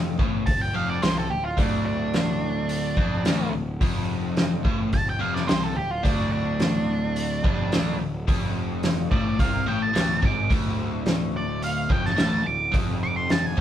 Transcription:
0.00 0.16 F1 medium
0.00 0.18 F2 loud
0.19 0.45 A1 medium
0.19 0.46 A2 medium
0.19 kick loud
0.46 0.73 D1 medium
0.46 0.69 D2 medium
0.46 0.60 A5 loud
0.46 kick medium
0.46 open hi-hat soft
0.61 0.75 G5 medium
0.74 1.01 F1 medium
0.74 1.01 F2 medium
0.74 0.90 F5 medium
0.90 1.02 D5 medium
1.02 1.28 C2 medium
1.02 1.29 C3 medium
1.02 1.16 C5 medium
1.02 snare loud
1.02 open hi-hat soft
1.18 1.30 A4 medium
1.30 1.56 D1 medium
1.30 1.53 D2 medium
1.30 1.44 G4 medium
1.44 1.59 F4 medium
1.57 2.94 D1 medium
1.57 2.96 D2 medium
1.57 1.85 D4 medium
1.57 kick medium
1.57 open hi-hat soft
1.86 3.49 D4 medium
2.14 snare medium
2.14 open hi-hat soft
2.69 open hi-hat soft
2.97 3.24 F1 medium
2.97 3.24 F2 medium
2.97 kick medium
3.25 3.51 D1 medium
3.25 3.52 D2 medium
3.25 snare loud
3.25 open hi-hat medium
3.53 3.79 D1 medium
3.53 3.76 D2 medium
3.81 4.61 F1 medium
3.81 4.64 F2 loud
3.81 kick loud
3.81 open hi-hat medium
4.37 snare medium
4.37 open hi-hat soft
4.64 4.91 A1 medium
4.64 4.92 A2 medium
4.64 kick medium
4.93 5.19 D1 medium
4.93 5.15 D2 medium
4.93 5.07 A5 loud
4.93 kick medium
4.93 open hi-hat soft
5.10 5.21 G5 medium
5.19 5.47 F1 medium
5.19 5.47 F2 medium
5.19 5.34 F5 medium
5.34 5.48 D5 medium
5.34 snare soft
5.47 5.75 C2 medium
5.47 5.75 C3 loud
5.47 5.63 C5 medium
5.47 snare loud
5.47 open hi-hat soft
5.63 5.76 A4 medium
5.75 6.03 D1 medium
5.75 5.98 D2 medium
5.75 5.91 G4 medium
5.91 6.03 F4 medium
6.03 7.40 D1 medium
6.03 7.42 D2 loud
6.03 6.31 D4 loud
6.03 kick medium
6.03 open hi-hat soft
6.32 7.96 D4 medium
6.60 snare medium
6.60 open hi-hat soft
7.16 open hi-hat soft
7.44 7.70 F1 medium
7.44 7.71 F2 medium
7.44 kick loud
7.72 7.98 D1 medium
7.72 7.99 D2 medium
7.72 snare loud
7.72 open hi-hat medium
7.99 8.25 D1 medium
7.99 8.22 D2 medium
8.27 9.08 F1 medium
8.27 9.10 F2 loud
8.27 kick loud
8.27 open hi-hat soft
8.83 snare loud
8.83 open hi-hat soft
9.11 9.37 A1 medium
9.11 9.39 A2 medium
9.11 9.38 D5 loud
9.11 kick medium
9.39 9.65 C2 medium
9.39 9.66 C3 medium
9.39 9.67 F5 medium
9.39 kick medium
9.39 open hi-hat soft
9.66 9.94 A1 medium
9.66 9.93 A2 medium
9.66 9.82 G5 medium
9.82 10.22 A5 medium
9.93 10.22 D1 medium
9.93 10.21 D2 medium
9.93 snare loud
9.93 open hi-hat medium
10.22 10.49 G#1 medium
10.22 10.49 G#2 medium
10.22 10.51 D6 medium
10.22 kick loud
10.50 11.86 D1 medium
10.50 11.89 D2 loud
10.50 kick loud
10.50 open hi-hat soft
11.06 snare loud
11.06 open hi-hat soft
11.37 11.63 D5 medium
11.62 11.90 F5 medium
11.62 open hi-hat soft
11.89 12.16 F1 medium
11.89 12.16 F2 medium
11.89 12.06 G5 loud
11.89 kick medium
12.05 12.46 A5 medium
12.05 snare soft
12.16 12.44 D1 medium
12.16 12.42 D2 medium
12.16 snare loud
12.16 open hi-hat soft
12.43 12.72 D1 medium
12.43 12.67 D2 medium
12.43 12.74 D6 medium
12.72 13.54 F1 medium
12.72 13.56 F2 loud
12.72 kick loud
12.72 open hi-hat soft
13.03 13.16 D6 loud
13.16 13.31 C6 medium
13.30 13.46 A5 medium
13.30 snare loud
13.30 open hi-hat soft
13.46 13.59 G#5 medium
13.57 13.61 A2 medium

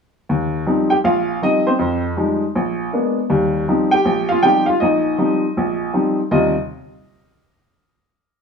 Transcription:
0.29 0.61 D#2 medium
0.66 0.92 F3 soft
0.66 0.92 G3 soft
0.66 0.92 C4 soft
0.66 0.92 D#4 medium
0.90 0.97 G4 medium
0.90 0.95 G5 medium
1.04 1.37 A#1 medium
1.04 1.40 F4 medium
1.04 1.40 F5 medium
1.42 1.67 F3 soft
1.42 1.67 G3 soft
1.42 1.67 C4 soft
1.42 1.68 D#4 soft
1.42 1.67 D#5 medium
1.67 2.02 C4 medium
1.67 2.01 C5 medium
1.79 2.12 F2 medium
2.17 2.42 F3 soft
2.17 2.42 G3 soft
2.17 2.43 G#3 soft
2.17 2.43 D#4 soft
2.55 2.88 A#1 medium
2.93 3.18 G#3 soft
2.93 3.18 A#3 soft
2.93 3.18 B3 soft
2.93 3.18 D4 soft
3.30 3.62 D#2 medium
3.30 3.62 G3 medium
3.68 3.93 F3 soft
3.68 3.94 G3 soft
3.68 3.94 C4 soft
3.68 3.94 D#4 soft
3.91 4.28 G4 medium
3.91 4.27 G5 medium
4.05 4.38 A#1 medium
4.29 4.44 F4 medium
4.29 4.43 F5 medium
4.42 4.68 F3 soft
4.42 4.68 G3 soft
4.42 4.68 C4 soft
4.42 4.69 D#4 soft
4.42 4.67 G4 medium
4.42 4.65 G5 loud
4.66 4.81 F4 medium
4.66 4.79 F5 medium
4.80 5.14 A#1 medium
4.80 5.18 D#4 medium
4.80 6.13 D#5 medium
5.18 5.44 F3 soft
5.18 5.44 G3 soft
5.18 5.44 C4 soft
5.18 5.44 D#4 soft
5.57 5.89 A#1 medium
5.94 6.19 F3 soft
5.94 6.19 G3 soft
5.94 6.19 C4 soft
5.94 6.19 D#4 soft
6.31 6.53 D#2 medium
6.31 6.53 C3 soft
6.31 6.53 G3 medium
6.31 6.53 F4 medium
6.31 6.54 D#5 medium

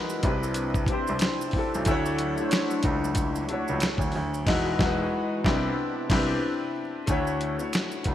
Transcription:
0.00 0.23 E3 medium
0.00 0.23 G#3 medium
0.00 0.23 D#4 medium
0.00 0.23 E4 medium
0.00 0.22 F#4 medium
0.00 0.25 F#4 medium
0.00 0.25 A#4 medium
0.00 0.26 B4 medium
0.00 0.23 D#5 medium
0.10 maracas medium
0.22 0.82 C2 loud
0.22 1.84 C3 medium
0.22 0.83 C4 medium
0.22 1.85 C4 medium
0.22 1.84 D4 medium
0.22 0.83 D4 medium
0.22 4.43 E4 medium
0.22 0.84 E4 medium
0.22 0.84 G4 medium
0.22 kick loud
0.22 closed hi-hat medium
0.27 0.85 B4 medium
0.43 maracas soft
0.54 closed hi-hat medium
0.54 maracas medium
0.74 kick medium
0.74 maracas medium
0.86 0.95 C2 soft
0.86 1.48 C4 medium
0.86 1.49 D4 medium
0.86 1.49 E4 medium
0.86 kick medium
0.86 closed hi-hat medium
0.92 1.50 G4 medium
0.92 1.51 C5 loud
1.07 1.21 C2 medium
1.07 maracas soft
1.19 finger snap medium
1.19 snare loud
1.19 closed hi-hat medium
1.19 maracas medium
1.41 maracas soft
1.51 1.61 B1 soft
1.51 1.83 C4 medium
1.51 1.84 D4 medium
1.51 kick medium
1.51 open hi-hat soft
1.56 1.85 E4 medium
1.56 1.85 G4 medium
1.56 1.86 A4 medium
1.74 1.86 B1 medium
1.74 maracas soft
1.85 2.33 D2 loud
1.85 4.45 F#3 medium
1.85 2.32 A3 loud
1.85 4.44 D4 medium
1.85 2.33 D4 loud
1.85 2.33 E4 loud
1.85 4.45 C#5 medium
1.85 kick loud
1.85 closed hi-hat medium
1.85 maracas medium
1.90 2.34 F#4 loud
1.90 2.35 C#5 loud
2.06 maracas medium
2.19 closed hi-hat medium
2.37 3.39 A3 medium
2.37 3.40 D4 medium
2.37 3.41 E4 medium
2.37 maracas soft
2.41 3.41 F#4 medium
2.41 2.45 C5 medium
2.49 3.45 C#5 medium
2.49 finger snap medium
2.49 closed hi-hat medium
2.49 maracas medium
2.53 snare loud
2.71 maracas soft
2.83 3.43 C#2 loud
2.83 kick medium
2.83 closed hi-hat medium
3.04 maracas soft
3.15 kick medium
3.15 closed hi-hat medium
3.15 maracas medium
3.35 maracas medium
3.48 4.47 A3 medium
3.48 4.47 D4 medium
3.48 4.48 E4 medium
3.48 4.48 F#4 medium
3.48 closed hi-hat medium
3.53 4.49 C#5 medium
3.68 3.81 C#2 medium
3.68 maracas medium
3.80 finger snap medium
3.80 snare loud
3.80 closed hi-hat medium
3.80 maracas medium
3.98 4.12 D2 medium
3.98 kick medium
3.98 maracas soft
4.12 4.48 D2 medium
4.12 open hi-hat soft
4.34 maracas soft
4.46 4.71 E1 loud
4.46 5.44 E3 medium
4.46 4.70 G#3 loud
4.46 5.44 G#3 medium
4.46 4.70 D#4 loud
4.46 5.44 D#4 medium
4.46 4.71 E4 loud
4.46 5.44 F#4 medium
4.46 4.72 F#4 loud
4.46 kick loud
4.46 snare medium
4.46 crash medium
4.51 4.73 B4 medium
4.79 5.03 E1 loud
4.79 5.02 G#3 loud
4.79 5.03 D#4 loud
4.79 5.03 E4 loud
4.79 5.04 F#4 loud
4.79 kick loud
4.79 snare loud
4.83 5.05 B4 loud
5.44 5.68 C2 loud
5.44 7.06 C3 medium
5.44 7.06 B3 medium
5.44 5.67 C4 medium
5.44 5.68 D4 medium
5.44 7.07 D4 medium
5.44 7.07 E4 medium
5.44 5.69 E4 medium
5.44 5.69 G4 medium
5.44 kick loud
5.44 snare loud
5.48 5.70 B4 medium
6.09 6.34 C2 loud
6.09 6.33 C4 loud
6.09 6.34 D4 loud
6.09 6.34 E4 loud
6.09 6.35 G4 loud
6.09 kick loud
6.09 snare loud
6.09 crash medium
6.14 6.36 B4 loud
7.06 7.55 D2 medium
7.06 7.53 A3 loud
7.06 7.54 D4 medium
7.06 7.54 E4 medium
7.06 7.55 F#4 medium
7.06 kick loud
7.06 closed hi-hat medium
7.06 maracas medium
7.11 7.56 C#5 loud
7.27 maracas soft
7.41 closed hi-hat medium
7.58 8.01 A3 medium
7.58 8.02 D4 medium
7.58 8.02 E4 medium
7.58 8.03 F#4 medium
7.58 maracas soft
7.62 8.03 C#5 medium
7.73 finger snap medium
7.73 snare loud
7.73 closed hi-hat medium
7.73 maracas medium
7.92 maracas soft
8.04 8.15 C#2 medium
8.04 8.15 A3 medium
8.04 8.15 D4 medium
8.04 8.15 E4 medium
8.04 8.15 F#4 medium
8.04 kick medium
8.04 closed hi-hat medium
8.09 8.15 C#5 medium

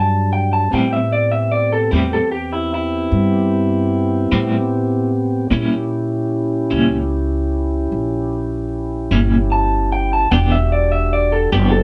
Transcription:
0.00 0.69 G2 medium
0.00 0.68 F#3 medium
0.00 0.68 G3 medium
0.00 0.68 D4 medium
0.00 0.31 A5 medium
0.33 0.52 G5 medium
0.53 0.72 A5 medium
0.71 0.96 A2 medium
0.71 1.89 A2 medium
0.71 0.97 G3 medium
0.71 5.47 B3 medium
0.71 5.47 C4 medium
0.71 0.97 C4 medium
0.71 0.97 E4 medium
0.71 5.47 G4 medium
0.71 0.92 G5 medium
0.93 1.12 E5 medium
1.12 1.32 D5 medium
1.32 1.51 E5 medium
1.51 1.71 D5 medium
1.72 1.92 A4 medium
1.91 3.08 E2 medium
1.91 2.17 A2 soft
1.91 2.17 G3 medium
1.91 2.16 C4 medium
1.91 2.16 E4 medium
1.91 2.12 G4 medium
2.13 2.31 A4 medium
2.32 2.51 G4 medium
2.53 2.72 E4 medium
2.74 5.09 E4 medium
3.12 4.28 G2 medium
4.32 5.48 A2 medium
4.32 4.57 A2 medium
4.32 4.56 G3 medium
4.32 4.56 C4 medium
4.32 4.56 E4 medium
5.50 5.75 A#2 medium
5.50 6.68 A#2 medium
5.50 5.76 G3 medium
5.50 10.28 C#4 medium
5.50 5.76 C#4 medium
5.50 10.28 E4 medium
5.50 5.76 E4 medium
5.50 10.28 G4 medium
6.71 7.88 C#2 medium
6.71 6.96 A#2 medium
6.71 6.96 G3 medium
6.71 6.96 C#4 medium
6.71 6.95 E4 medium
7.92 9.09 A#1 medium
9.11 10.28 G1 medium
9.11 9.37 A#2 medium
9.11 9.36 G3 medium
9.11 9.36 C#4 medium
9.11 9.36 E4 medium
9.52 9.91 A5 medium
9.92 10.12 G5 medium
10.13 10.31 A5 medium
10.31 11.49 E1 medium
10.31 10.56 E3 medium
10.31 10.56 B3 medium
10.31 10.57 D4 medium
10.31 11.83 D4 medium
10.31 11.83 F#4 medium
10.31 11.83 G4 medium
10.31 10.57 G4 medium
10.31 10.51 G5 medium
10.52 10.72 E5 medium
10.72 10.92 D5 medium
10.92 11.12 E5 medium
11.13 11.32 D5 medium
11.32 11.52 A4 medium
11.52 11.83 F#1 medium
11.52 11.78 E3 medium
11.52 11.78 B3 medium
11.52 11.78 D4 medium
11.52 11.71 G4 medium
11.52 11.77 G4 medium
11.71 11.83 A4 medium

